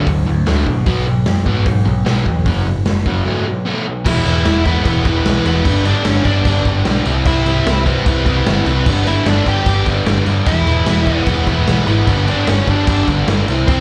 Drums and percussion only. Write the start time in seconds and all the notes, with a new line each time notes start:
0.07 kick, open hi-hat
0.46 snare, open hi-hat
0.67 kick
0.86 kick, open hi-hat
1.26 snare, open hi-hat
1.46 kick
1.66 kick, open hi-hat
2.06 snare, open hi-hat
2.26 kick
2.46 kick, open hi-hat
2.85 snare, open hi-hat
3.06 kick
4.06 kick, crash
4.26 crash
4.45 snare, crash
4.66 kick, crash
4.85 kick, crash
5.05 kick, crash
5.26 snare, crash
5.46 crash
5.65 kick, crash
5.85 crash
6.05 snare, crash
6.25 kick, crash
6.45 kick, crash
6.65 kick, crash
6.85 snare, crash
7.05 crash
7.25 kick, crash
7.46 crash
7.66 snare, crash
7.86 kick, crash
8.06 kick, crash
8.26 kick, crash
8.46 snare, crash
8.66 crash
8.86 kick, crash
9.07 crash
9.26 snare, crash
9.46 kick, crash
9.66 kick, crash
9.86 kick, crash
10.06 snare, crash
10.26 crash
10.46 kick, crash
10.67 crash
10.86 snare, crash
11.07 kick, crash
11.26 kick, crash
11.47 kick, crash
11.67 snare, crash
11.87 crash
12.07 kick, crash
12.28 crash
12.47 snare, crash
12.67 kick, crash
12.87 kick, crash
13.07 kick, crash
13.28 snare, crash
13.48 crash
13.68 kick, crash